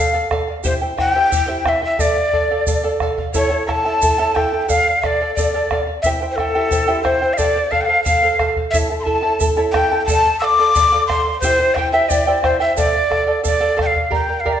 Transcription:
Already playing: charango A4 D5 F5, pan flute F5, quena F5
0.13 charango A4 D5 F5
0.31 charango A4 D5 F5, bombo rim, bombo low
0.48 charango D5 F5
0.64 charango E4 G4 C5 E5 G5, pan flute C5, quena C5, bombo low, shaker
0.81 charango E4 C5 G5
0.97 charango E4 C5 E5 G5, quena F#5, pan flute G5, bombo rim, bombo low
1.12 charango E4 C5 E5 G5, quena G5
1.16 charango G4
1.30 charango E4 C5 E5 G5, bombo low, shaker
1.47 charango E4 G4 C5 E5 G5
1.65 charango E4 C5 E5 G5, pan flute E5, quena E5, bombo rim, bombo low
1.82 charango E4 C5 G5, pan flute E5, quena E5
1.99 charango A4 D5 F5, pan flute D5, quena D5, bombo low, shaker
2.16 charango D5 F5
2.33 charango A4 D5 F5, bombo low
2.51 charango A4 D5 F5
2.67 charango A4 D5 F5, bombo low, shaker
2.84 charango A4 D5 F5
3.00 charango A4 D5 F5, bombo rim, bombo low
3.18 charango D5 F5, bombo low
3.33 charango E4 A4 C#5 E5 A5, pan flute C#5, quena C#5, bombo low, shaker
3.50 charango E4 A4 A5
3.67 charango E4 A4 E5 A5, pan flute A5, quena A5 A#5, bombo rim, bombo low
3.85 charango E4 A4 C#5 E5 A5
4.02 charango E4 A4 E5 A5, bombo low, shaker
4.18 charango E4 A4 C#5 E5 A5
4.35 charango E4 A4 E5 A5, pan flute G5, quena G5, bombo rim, bombo low
4.52 charango E4 A4 A5
4.68 charango A4 D5 F5, pan flute F5, quena F5, bombo low, shaker
4.86 charango D5 F5
5.02 charango A4 D5 F5, pan flute D5, quena E5, bombo rim, bombo low
5.06 quena D5
5.21 charango A4 D5 F5
5.35 charango A4 D5, quena D5, pan flute D5, bombo low, shaker
5.40 charango F5
5.54 charango A4 D5 F5
5.71 charango A4 D5 F5, bombo rim, bombo low
5.87 charango D5 F5
6.02 charango E4 G4 C5 E5, quena E5, pan flute E5, bombo low, shaker
6.06 charango G5
6.22 charango E4 C5 G5
6.31 pan flute C5, quena C5
6.35 charango E4 C5 E5, pan flute A4, quena A4, bombo rim, bombo low
6.40 charango G5
6.55 charango E4 G4 C5 E5 G5
6.71 charango E4 C5 E5 G5, bombo low, shaker
6.88 charango E4 G4 C5 E5 G5
7.03 charango E4 C5 E5 G5, pan flute C5, quena C5, bombo rim, bombo low
7.22 charango E4 C5 G5
7.32 pan flute F5, quena F5
7.37 charango A4 C5 F5, pan flute D5, quena D5, bombo low, shaker
7.56 charango C5 F5
7.70 charango A4 C5 F5, pan flute F5, quena F5, bombo low
7.80 pan flute F5 G5, quena G5
7.85 charango A4 C5 F5, quena F5
8.04 charango A4 C5 F5, pan flute F5, quena F5, bombo low, shaker
8.22 charango A4 C5 F5
8.39 charango A4 C5 F5, bombo rim, bombo low
8.56 charango C5 F5, bombo low
8.71 charango E4 C#5 E5 A5, quena E5, pan flute E5, bombo low, shaker
8.75 charango A4
8.90 charango E4 A4 A5
9.00 quena A5 C6, pan flute C6
9.05 charango E4 A4 E5 A5, pan flute A5, bombo low
9.22 charango E4 A4 C#5 E5 A5
9.40 charango E4 A4 E5 A5, bombo low, shaker
9.57 charango E4 A4 C#5 E5 A5
9.72 charango E4 A4 E5 A5, quena G5, pan flute G5, bombo rim, bombo low
9.92 charango E4 A4 A5
10.05 charango A4, pan flute A5, quena A5, bombo low, shaker
10.09 charango D5 F5
10.25 charango D5 F5
10.39 charango A4 D5, pan flute D6, quena E6, bombo rim
10.43 charango F5, quena D6
10.59 charango A4 D5 F5
10.75 charango A4 D5 F5, bombo low, shaker
10.92 charango A4 D5 F5
11.07 charango A4 D5 F5, pan flute C6, quena C6, bombo rim, bombo low
11.25 charango D5 F5
11.40 charango E4 G4 E5, quena C5, pan flute C5, bombo low, shaker
11.44 charango C5 G5
11.60 charango E4 C5 G5
11.75 charango E4 C5 E5 G5, quena G5, pan flute G5, bombo rim, bombo low
11.92 charango E4 G4 C5 E5 G5, pan flute E5, quena E5
12.09 charango E4 C5 E5 G5, pan flute D5, quena D5, bombo low, shaker
12.27 charango E4 G4 C5 E5 G5
12.43 charango E4 C5 E5 G5, pan flute C5, quena C5, bombo rim, bombo low
12.59 charango E4 C5 G5, pan flute E5, quena E5
12.76 charango A4 D5 F5, pan flute D5, quena D5, bombo low, shaker
12.94 charango D5 F5
13.10 charango A4 D5 F5, bombo rim, bombo low
13.27 charango A4 D5 F5
13.43 charango A4 D5 F5, quena D5, bombo low, shaker
13.60 charango A4 D5 F5
13.77 charango A4 D5 F5, bombo rim, bombo low
13.82 quena G5
13.86 quena F5
13.94 charango D5 F5, bombo low
14.11 charango G4 A#4 D5 G5 A#5, quena G5, bombo low
14.28 charango A#4 D5 A#5
14.40 quena F5
14.45 charango G4 A#4 D5 G5 A#5, quena E5, bombo low
14.53 quena D5

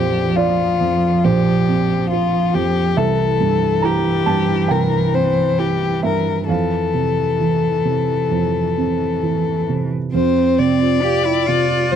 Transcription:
Already playing: felt piano A#1 F2 C5 D5, cello F3, violin G4
0.36 violin F4, felt piano F4 D5
0.80 felt piano F2
1.24 felt piano A#1 C5, violin G4
1.68 felt piano C4
2.10 violin F4, felt piano F4
2.54 felt piano F2, violin G4
2.97 felt piano C2 E5, cello E3, violin A4
3.40 felt piano G2
3.82 felt piano E4 A#5, violin G4
4.26 felt piano G2 A5
4.68 felt piano C2 G5, violin A#4
5.14 felt piano C4, violin C5
5.58 felt piano E4, violin G4
6.03 felt piano G2 E5, violin A#4
6.48 felt piano F2 F5, cello E3, violin A4
6.94 felt piano C3
7.40 felt piano E3
7.85 felt piano C3
8.31 felt piano F2
8.78 felt piano C4
9.23 felt piano E3
9.69 felt piano C3
10.14 felt piano F2, cello C4, vibraphone F4, violin C5
10.37 vibraphone C5
10.58 felt piano C3, violin D5, vibraphone G5
10.82 vibraphone F4
11.03 felt piano F4, cello G4, vibraphone F5
11.25 cello E4, vibraphone G5
11.46 felt piano C3, cello F4, vibraphone F4
11.92 felt piano F2, vibraphone F4, violin C5

